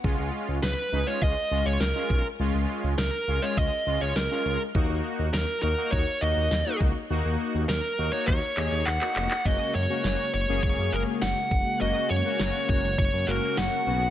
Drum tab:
CC |----------------|----------------|----------------|----------------|
HH |----------------|----------------|----------------|----------------|
CP |----------------|----------------|----------------|--------x-x-xxxx|
SD |----o-------o---|----o-------o---|----o-------o---|----o-----------|
BD |o-------o-----o-|--------o-------|o-------o-----o-|--------o-------|

CC |x---------------|----------------|
HH |x-x-x-x-x-x-x-x-|x-x-x-x-x-x-x-x-|
CP |----------------|----------------|
SD |----o-------o---|----o-------o---|
BD |o-------o-----o-|------o-o-------|